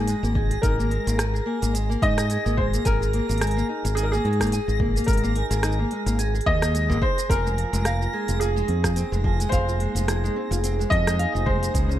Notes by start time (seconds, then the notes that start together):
Already playing: G#2 G#4 G#5 A#6
0.08 G#3, open hi-hat, shaker
0.23 G#1 A#3, shaker
0.35 D#4 G#4, kick
0.51 G#4, open hi-hat
0.62 G#1 D#4 A#4, kick, open hi-hat, shaker
0.79 A#3, shaker
0.90 G#3, open hi-hat
1.06 G#1 A#3, open hi-hat, shaker
1.18 G#5, cross-stick, open hi-hat, shaker
1.34 G#4, shaker
1.46 A#3 G#5
1.61 G#1 A#3, open hi-hat, shaker
1.74 G#3, open hi-hat, shaker
1.89 A#3, shaker
2.02 G#2 D#4 D#5, kick, open hi-hat
2.18 G#4, cross-stick, open hi-hat, shaker
2.30 D#4 G#4, open hi-hat, shaker
2.46 G#1 A#3, shaker
2.57 G#3 C5, kick
2.73 A#3, open hi-hat, shaker
2.85 G#1 A#4 G#5, kick, open hi-hat, shaker
3.01 G#4, shaker
3.13 A#3, open hi-hat
3.29 G#1 A#3, open hi-hat, shaker
3.32 open hi-hat
3.38 G#3, cross-stick, open hi-hat
3.41 G#5, open hi-hat, shaker
3.47 open hi-hat
3.51 open hi-hat
3.57 A#3, shaker
3.69 D#4
3.85 G#1 G#4, open hi-hat, shaker
3.95 D#4 G#4, open hi-hat, shaker
4.03 A#4
4.12 A#3 G#4, shaker
4.25 G#2 G#3 G#4, open hi-hat
4.33 open hi-hat
4.40 A#3, kick, cross-stick, open hi-hat, shaker
4.47 open hi-hat
4.52 G#5, open hi-hat, shaker
4.68 G#1 G#4, shaker
4.80 A#3, kick
4.96 A#3, open hi-hat, shaker
4.99 open hi-hat
5.04 G#1 A#4, kick, open hi-hat
5.08 G#3, open hi-hat, shaker
5.13 open hi-hat
5.17 open hi-hat
5.24 A#3, shaker
5.36 D#4 G#5, open hi-hat
5.51 G#1 G#4, open hi-hat, shaker
5.63 D#4, cross-stick, open hi-hat, shaker
5.72 shaker
5.79 A#3
5.91 G#3, open hi-hat
6.06 G#1 A#3, open hi-hat, shaker
6.19 G#4 G#5, open hi-hat, shaker
6.35 G#4, shaker
6.41 open hi-hat
6.46 D#2 A#3 D#5, kick
6.62 A#3, cross-stick, open hi-hat, shaker
6.74 G#3, open hi-hat, shaker
6.90 G#1 A#3, kick, shaker
7.02 D#4 C5, kick
7.18 G#4, open hi-hat, shaker
7.29 F1 A#3 C4 A#4 G#5, kick, open hi-hat, shaker
7.46 G#3, shaker
7.58 F3, open hi-hat
7.73 F1 G#3 D#4, open hi-hat, shaker
7.85 F5, cross-stick, open hi-hat, shaker
8.01 F4, shaker
8.13 G#3 G#4
8.25 F1 G#4, open hi-hat
8.29 G#3, shaker
8.40 F3 G#4, open hi-hat, shaker
8.56 G#3, shaker
8.68 F2 C4, open hi-hat
8.84 F4, kick, cross-stick, open hi-hat, shaker
8.96 C4 C5, open hi-hat, shaker
9.12 F1 G#3, shaker
9.24 F3 G#5, kick
9.40 G#3, open hi-hat, shaker
9.49 F1 C5 F5, kick, open hi-hat, shaker
9.68 F4, shaker
9.80 G#3, open hi-hat
9.95 F1 G#3, open hi-hat, shaker
10.08 F3 G#4, cross-stick, open hi-hat, shaker
10.24 G#3, shaker
10.36 C4
10.51 F1 F4, open hi-hat, shaker
10.64 C4, open hi-hat, shaker
10.79 G#3, shaker
10.90 F2 F3 D#5, kick, open hi-hat
11.07 G#3, cross-stick, open hi-hat, shaker
11.19 F5 G#5, open hi-hat
11.34 F1 F4, shaker
11.46 G#3 C5, kick
11.62 G#3, open hi-hat, shaker
11.74 C#2 G#3, kick, open hi-hat, shaker
11.89 C#4, shaker